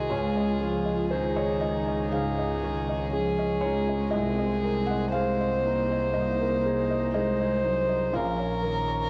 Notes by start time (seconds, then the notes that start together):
Already playing: C2 D#3 C4 D#4 F#4 G#4 C5 D#5 G#5
0.10 C#2 G#3 C#4 D#4 F4 G#4 C#5
0.36 F4 D#5
0.61 F3 G#4 C#5
0.85 F4 D#5
1.11 D#3 C#4 D#4 G#4 C5
1.36 C#5 D#5
1.61 D#4 D#5
1.88 C#4 D#5
2.12 G#2 C#3 G#4 F5
2.39 D#5
2.63 D#3 C#4 G#4
2.89 G#4 D#5
3.13 F3 C#4 G#4
3.39 C#4 D#5
3.61 G#3 D#4 F4 C#5
3.88 F4 D#5
4.11 C2 C4 D#4 G#4 A#4 D#5
4.38 C5 D#5
4.64 A#4 G#5
4.86 C5 D#5 F#5
5.12 G#3 C4 G#4 C5 F5
5.40 D#5
5.63 A#3 D#4
5.90 G#4 D#5
6.13 C2 A#3 D#4 D#5
6.41 A#4
6.66 G#4
6.90 D#5
7.14 G#3 G#4 C5 D#5
7.40 G#4 D#5
7.64 F#3 D#4 C5
7.89 C5 D#5
8.13 A#1 F3 C#4 F4 A#4 F5
8.38 C#5
8.62 D#3 A#4 A#5
8.88 C#5